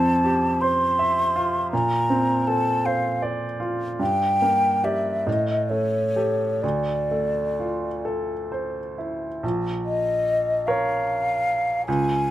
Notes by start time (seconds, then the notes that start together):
Already playing: F2 C4 A5
0.24 G4
0.61 C5 C6
0.99 E5
1.36 F4
1.72 A#2 A#5
2.10 C4
2.47 A4 A5
2.86 C5 F5
3.22 D5
3.60 F4
4.00 G2 G5
4.42 A#3
4.84 G4 D5 E5
5.27 A2 D#5
5.70 A3 C#5
6.16 G4 A4
6.62 D2 D5
7.11 A3
7.60 F4
8.05 A4
8.52 C5
8.98 E4
9.43 A#1
9.85 D#5
10.67 A#4 C#5 F5
11.86 C#2 G#5